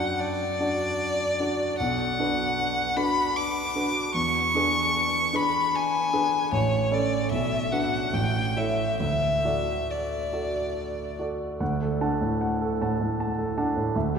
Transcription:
Already playing: grand piano F#2 D4 F#4 D5, violin F#5
0.20 violin D5
0.60 grand piano D4 F#4 D5
1.40 grand piano D4 F#4 D5
1.79 grand piano B1, violin F#5
2.19 grand piano D4 F#4 B4
2.96 grand piano D4 F#4 B4, violin B5
3.36 violin D6
3.75 grand piano D4 F#4 B4
4.14 grand piano E2, violin C#6
4.55 grand piano D4 G#4 B4
5.33 grand piano D4 G#4 B4, violin B5
5.75 violin G#5
6.13 grand piano D4 G#4 B4
6.52 grand piano A1, violin C#5
6.91 grand piano C#4 A4 C#5, violin D5
7.31 grand piano B1, violin E5
7.72 grand piano D4 F#4 B4, violin F#5
8.13 grand piano A1, violin G5
8.56 grand piano E4 A4 C#5, violin E5
9.00 grand piano D2, violin E5
9.45 grand piano F#4 A4 D5
9.90 violin D5
10.33 grand piano F#4 A4 D5
11.19 grand piano F#4 A4 D5
11.60 grand piano D2 F#5
11.82 grand piano A4
12.01 grand piano D4 F#5 A5
12.21 grand piano A2
12.41 grand piano F#5
12.61 grand piano A4
12.81 grand piano A2 F#5 A5
13.01 grand piano A2
13.20 grand piano A5
13.38 grand piano A4
13.58 grand piano D4 F#5 A5
13.77 grand piano A2
13.96 grand piano D2 E5
14.15 grand piano G4

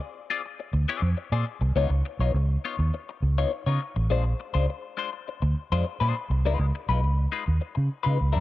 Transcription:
0.00 muted clean electric guitar stroke
0.30 clean electric guitar C4 F4 G#4 D5
0.46 muted clean electric guitar stroke
0.60 muted clean electric guitar stroke
0.73 fingered electric bass D2, muted clean electric guitar stroke
0.88 clean electric guitar C4 F4 G#4 D5
1.02 fingered electric bass F2, muted clean electric guitar stroke
1.17 muted clean electric guitar stroke
1.32 fingered electric bass A#2, clean electric guitar C4 F4 G#4 D5
1.46 muted clean electric guitar stroke
1.61 fingered electric bass C2, muted clean electric guitar stroke
1.76 fingered electric bass C#2, clean electric guitar B3 D#4 F4 C#5
1.90 fingered electric bass C#2, muted clean electric guitar stroke
2.05 muted clean electric guitar stroke
2.19 fingered electric bass B1, clean electric guitar B3 D#4 F4 C#5
2.34 fingered electric bass C#2, muted clean electric guitar stroke
2.65 clean electric guitar B3 D#4 F4 C#5
2.79 fingered electric bass D#2, muted clean electric guitar stroke
2.94 muted clean electric guitar stroke
3.09 muted clean electric guitar stroke
3.22 fingered electric bass C#2
3.38 clean electric guitar B3 D#4 F4 C#5
3.52 muted clean electric guitar stroke
3.66 fingered electric bass C#3, clean electric guitar B3 D#4 F4 C#5
3.82 muted clean electric guitar stroke
3.96 fingered electric bass A1, muted clean electric guitar stroke
4.10 fingered electric bass A#1, clean electric guitar G#3 D4 F4 C5
4.40 muted clean electric guitar stroke
4.54 fingered electric bass C#2, clean electric guitar G#3 D4 F4 C5
4.70 muted clean electric guitar stroke
4.97 clean electric guitar G#3 D4 F4 C5
5.13 muted clean electric guitar stroke
5.28 muted clean electric guitar stroke
5.42 fingered electric bass D2, muted clean electric guitar stroke
5.72 fingered electric bass F2, clean electric guitar G#3 D4 F4 C5
5.86 muted clean electric guitar stroke
6.00 fingered electric bass A#2, clean electric guitar G#3 D4 F4 C5
6.16 muted clean electric guitar stroke
6.30 fingered electric bass C2, muted clean electric guitar stroke
6.45 fingered electric bass C#2, clean electric guitar G#3 D#4 F4 B4
6.59 fingered electric bass C#2, muted clean electric guitar stroke
6.75 muted clean electric guitar stroke
6.89 fingered electric bass B1, clean electric guitar G#3 D#4 F4 B4
7.04 fingered electric bass C#2, muted clean electric guitar stroke
7.32 clean electric guitar G#3 D#4 F4 B4
7.48 fingered electric bass D#2
7.61 muted clean electric guitar stroke
7.75 fingered electric bass C#3, muted clean electric guitar stroke
8.03 fingered electric bass C#3, clean electric guitar G#3 D#4 F4 B4
8.18 fingered electric bass C#2, muted clean electric guitar stroke
8.33 fingered electric bass F2, clean electric guitar G#3 D#4 F4 B4

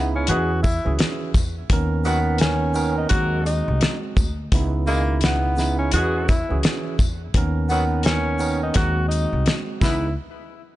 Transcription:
Already playing: upright bass C#2, tine electric piano C#3 B3 D#4 E4
0.16 tenor saxophone C#4
0.27 upright bass E2, horn section C#3 G#3 B3 G#4, tine electric piano E3 C#4 F#4 G#4, tenor saxophone F#4, closed hi-hat
0.63 tenor saxophone E4, kick, tambourine, shaker
0.85 upright bass C#2, tine electric piano E3 C#4 F#4 G#4
0.99 snare, closed hi-hat
1.34 upright bass E2, kick, closed hi-hat, tambourine, shaker
1.70 upright bass D#2, tine electric piano D#3 B3 C#4 A#4, kick, closed hi-hat
2.04 horn section D#3 F#3 B3 F#4, tine electric piano D#3 B3 C#4 A#4, tenor saxophone B3, tambourine, shaker
2.38 tenor saxophone C#4, snare, closed hi-hat
2.74 tine electric piano D#3 B3 C#4 A#4, tambourine, shaker
2.98 tenor saxophone D#4
3.09 upright bass D#2, horn section F#3 A#3 D#4 A#4, tine electric piano G#3 C4 F#4, tenor saxophone F#4, kick, closed hi-hat
3.46 tenor saxophone D#4, closed hi-hat, tambourine, shaker
3.68 upright bass C2
3.81 snare, closed hi-hat
4.17 upright bass D2, kick, tambourine, shaker
4.52 upright bass C#2, tine electric piano C#3 B3 D#4 E4, kick, closed hi-hat
4.86 tine electric piano B2 C#3 D#4 E4, horn section E3 G#3 D#4 G#4, tenor saxophone A#3, tambourine, shaker
5.21 tenor saxophone B3, snare, closed hi-hat
5.56 tine electric piano C#3 B3 D#4 E4, snare, tambourine, shaker
5.79 tenor saxophone C#4
5.92 upright bass E2, horn section C#3 G#3 B3 G#4, tine electric piano E3 C#4 F#4 G#4, tenor saxophone F#4, closed hi-hat
6.28 tenor saxophone E4, kick, closed hi-hat, tambourine, shaker
6.49 upright bass C#2, tine electric piano E3 C#4 F#4 G#4
6.63 snare, closed hi-hat
6.99 upright bass E2, kick, tambourine, shaker
7.34 upright bass D#2, tine electric piano D#3 B3 C#4 A#4, kick, closed hi-hat
7.69 horn section D#3 F#3 B3 F#4, tine electric piano D#3 B3 C#4 A#4, tenor saxophone B3, tambourine, shaker
8.03 tenor saxophone C#4, snare, closed hi-hat
8.39 tine electric piano D#3 B3 C#4 A#4, tambourine, shaker
8.63 tenor saxophone D#4
8.74 upright bass D#2, horn section F#3 A#3 D#4 A#4, tine electric piano G#3 C4 F#4, tenor saxophone F#4, kick, snare, closed hi-hat
9.08 tenor saxophone D#4, closed hi-hat, tambourine, shaker
9.33 upright bass C2
9.46 snare, closed hi-hat
9.81 upright bass C#2, tine electric piano C#3 B3 D#4 E4, horn section G#3 B3 E4 B4, tenor saxophone E4, kick, snare, tambourine

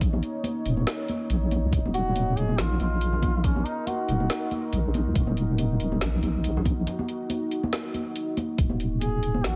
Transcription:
Already playing: wobble bass A#1, ambient pad D#4 C#5
0.01 kick, closed hi-hat
0.13 high conga
0.23 closed hi-hat
0.44 closed hi-hat, high conga
0.66 wobble bass D#1, closed hi-hat
0.77 high conga
0.87 snare, closed hi-hat
1.08 closed hi-hat, high conga
1.30 wobble bass A#1, closed hi-hat
1.51 closed hi-hat, high conga
1.63 wobble bass C#2
1.73 wobble bass D#1, ambient pad A#4, kick, closed hi-hat
1.85 high conga
1.94 duduk F#4, closed hi-hat
2.16 closed hi-hat, high conga
2.37 wobble bass D#1, duduk G#4, closed hi-hat
2.49 high conga
2.58 wobble bass A#1, duduk F4, snare, closed hi-hat
2.80 wobble bass A#1, duduk F4, closed hi-hat, high conga
3.01 closed hi-hat
3.13 low conga
3.22 kick, closed hi-hat, high conga
3.44 duduk C#4, kick, closed hi-hat
3.56 high conga
3.66 duduk D#4, closed hi-hat
3.87 duduk F#4, closed hi-hat, high conga
4.08 wobble bass D#1, closed hi-hat
4.20 high conga
4.30 snare, closed hi-hat
4.51 closed hi-hat, high conga
4.73 wobble bass A#1, closed hi-hat
4.94 closed hi-hat, high conga
5.06 wobble bass C#2
5.15 wobble bass D#1, ambient pad F#4, kick, closed hi-hat
5.27 high conga
5.37 closed hi-hat
5.58 closed hi-hat, high conga
5.80 wobble bass D#1, closed hi-hat
5.92 high conga
6.01 wobble bass A#1, snare, closed hi-hat
6.23 wobble bass A#1, closed hi-hat, high conga
6.44 closed hi-hat
6.57 low conga
6.65 kick, closed hi-hat, high conga
6.87 closed hi-hat, low conga
6.99 high conga
7.08 closed hi-hat
7.30 closed hi-hat, high conga
7.51 closed hi-hat
7.63 high conga
7.73 snare, closed hi-hat
7.94 closed hi-hat, high conga
8.16 closed hi-hat
8.37 closed hi-hat, high conga
8.58 wobble bass D#1, ambient pad D#4 A#4, kick, closed hi-hat
8.69 high conga
8.80 closed hi-hat
9.01 duduk G#4, closed hi-hat, high conga
9.23 wobble bass D#1, closed hi-hat
9.34 high conga
9.44 wobble bass A#1, duduk F#4, snare, closed hi-hat

